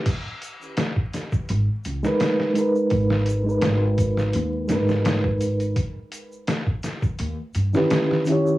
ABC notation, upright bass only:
X:1
M:4/4
L:1/8
Q:"Swing 16ths" 1/4=84
K:G#m
V:1 name="Upright bass" clef=bass
z4 G,,, C,, z2 | G,,,2 G,,,2 D,, G,,,3 | z4 D,, =G,, z2 |]